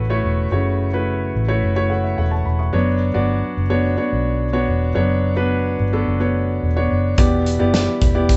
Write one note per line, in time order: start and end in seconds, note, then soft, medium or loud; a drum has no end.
0.00 0.20 A1 medium
0.00 0.52 C#3 medium
0.00 0.10 A3 medium
0.00 0.10 E4 medium
0.00 0.10 F#4 medium
0.00 1.90 A4 medium
0.00 0.94 B4 medium
0.00 0.10 C#5 medium
0.00 2.04 E5 medium
0.10 0.45 A3 medium
0.10 0.45 E4 medium
0.10 0.45 F#4 medium
0.10 0.45 C#5 medium
0.24 0.50 E1 medium
0.51 1.31 F#1 medium
0.51 1.31 C#3 medium
0.51 0.86 A3 medium
0.51 0.87 E4 medium
0.51 0.87 F#4 medium
0.51 0.87 C#5 medium
0.93 1.40 A3 medium
0.93 1.40 E4 medium
0.93 1.40 F#4 medium
0.93 1.40 B4 medium
1.35 1.61 A1 medium
1.48 1.72 A3 medium
1.48 1.72 E4 medium
1.48 1.72 F#4 medium
1.48 1.72 C#5 medium
1.63 2.14 F#1 medium
1.76 2.23 A3 medium
1.76 2.23 E4 medium
1.76 2.23 F#4 medium
1.76 1.90 C#5 medium
1.90 2.04 A4 soft
1.90 2.03 F#5 medium
2.04 2.17 E5 medium
2.18 2.44 E1 medium
2.18 2.32 A4 soft
2.18 2.31 F#5 medium
2.31 2.45 C#5 medium
2.31 2.45 A5 medium
2.45 2.72 E1 medium
2.45 2.59 B5 medium
2.59 2.86 E5 soft
2.59 2.86 C#6 soft
2.73 3.13 F#1 medium
2.73 3.53 F#3 medium
2.73 3.08 B3 medium
2.73 3.08 D4 medium
2.73 3.08 F#4 medium
2.73 3.09 C#5 medium
3.14 3.41 G1 medium
3.14 3.61 B3 medium
3.14 3.61 D4 medium
3.14 3.61 F#4 medium
3.14 3.61 D5 medium
3.57 3.96 F#1 medium
3.70 3.94 B3 medium
3.70 3.94 D4 medium
3.70 3.94 F#4 medium
3.70 3.94 C#5 medium
3.97 4.45 B3 medium
3.97 4.45 D4 medium
3.97 4.45 F#4 medium
3.97 4.45 C#5 medium
4.13 4.64 B1 medium
4.53 4.89 B3 medium
4.53 4.89 D4 medium
4.53 4.89 F#4 medium
4.53 4.89 C#5 medium
4.68 4.94 E1 medium
4.95 5.76 F#1 loud
4.95 5.75 F#3 medium
4.95 5.30 B3 medium
4.95 5.30 D4 medium
4.95 5.30 F#4 medium
4.95 5.31 C#5 medium
5.36 5.84 B3 medium
5.36 5.84 D4 medium
5.36 5.84 F#4 medium
5.36 5.84 B4 medium
5.80 6.06 G1 medium
5.93 6.16 B3 medium
5.93 6.16 D4 medium
5.93 6.16 F#4 medium
5.93 6.17 A4 medium
6.08 6.59 F#1 medium
6.20 6.67 B3 medium
6.20 6.67 D4 medium
6.20 6.67 F#4 medium
6.20 6.67 C#5 medium
6.63 6.89 E1 medium
6.76 7.11 B3 medium
6.76 7.12 D4 medium
6.76 7.12 F#4 medium
6.76 7.12 C#5 medium
6.91 7.17 F#1 medium
7.18 7.57 E1 medium
7.18 7.98 B2 medium
7.18 7.53 B3 medium
7.18 7.53 E4 medium
7.18 7.54 G4 medium
7.18 7.53 D5 medium
7.18 kick loud
7.18 closed hi-hat medium
7.46 closed hi-hat medium
7.59 7.86 F#1 medium
7.59 8.06 B3 medium
7.59 8.06 E4 medium
7.59 8.06 G4 medium
7.59 8.07 D5 medium
7.74 snare loud
7.74 closed hi-hat medium
8.01 8.37 E1 medium
8.01 kick medium
8.01 closed hi-hat medium
8.15 8.37 B3 medium
8.15 8.37 E4 medium
8.15 8.37 G4 medium
8.15 8.37 D5 medium
8.29 kick medium
8.29 closed hi-hat medium